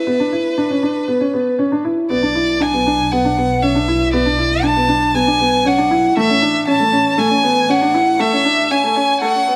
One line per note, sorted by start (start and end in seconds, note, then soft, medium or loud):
0.00 1.84 B4 medium
0.07 0.17 B3 medium
0.20 0.30 D4 medium
0.32 0.52 E4 medium
0.58 0.68 D4 medium
0.70 0.80 C#4 medium
0.83 1.03 D4 medium
1.08 1.18 B3 medium
1.21 1.31 C#4 medium
1.34 1.53 B3 medium
1.59 1.69 C#4 medium
1.72 1.82 D4 medium
1.85 2.04 E4 medium
2.10 6.15 B1 medium
2.10 2.20 B3 medium
2.10 2.64 D5 medium
2.23 2.33 D4 medium
2.35 2.55 E4 medium
2.60 2.71 D4 medium
2.60 3.13 G#5 medium
2.73 2.83 B3 medium
2.87 3.06 D4 medium
3.12 3.22 B3 medium
3.12 3.64 F#5 medium
3.25 3.35 D4 medium
3.37 3.57 B3 medium
3.62 3.73 C#4 medium
3.62 4.13 E5 medium
3.75 3.85 D4 medium
3.88 4.08 E4 medium
4.13 4.23 B3 medium
4.13 4.66 D5 loud
4.26 4.36 D4 medium
4.38 4.58 E4 medium
4.63 4.74 D4 medium
4.63 5.17 A5 loud
4.76 4.87 B3 medium
4.88 5.09 D4 medium
5.14 5.25 B3 medium
5.14 5.68 G#5 loud
5.27 5.37 D4 medium
5.40 5.60 B3 medium
5.65 5.76 C#4 medium
5.65 6.17 F#5 medium
5.78 5.88 D4 medium
5.91 6.11 E4 medium
6.17 9.56 A1 medium
6.17 6.27 A3 medium
6.17 6.65 E5 loud
6.30 6.40 C#4 medium
6.42 6.62 D4 medium
6.67 6.77 C#4 medium
6.67 7.20 A5 loud
6.80 6.90 A3 medium
6.92 7.12 C#4 medium
7.18 7.28 A3 medium
7.18 7.72 G#5 loud
7.30 7.41 C#4 medium
7.43 7.63 B3 medium
7.69 7.79 C#4 medium
7.69 8.22 F#5 loud
7.82 7.92 D4 medium
7.94 8.14 E4 medium
8.19 8.30 A3 loud
8.19 8.73 E5 loud
8.32 8.43 C#4 medium
8.45 8.65 D4 medium
8.70 8.81 C#4 medium
8.70 9.21 G#5 medium
8.84 8.94 A3 medium
8.96 9.16 C#4 medium
9.21 9.32 A3 medium
9.21 9.56 F#5 loud
9.35 9.45 C#4 medium
9.47 9.56 B3 medium